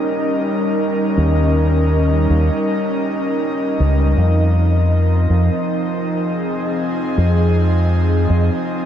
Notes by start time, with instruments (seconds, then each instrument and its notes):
Already playing: analog synth pad G3 C#4 D#4 A#4 D#5
1.17 fingered electric bass D#2
2.30 fingered electric bass D#2
3.80 fingered electric bass C#2
4.17 fingered electric bass F2, analog synth pad F3
4.78 analog synth pad C4
5.30 fingered electric bass F2
5.90 analog synth pad G#4
7.18 fingered electric bass F2
8.30 fingered electric bass F2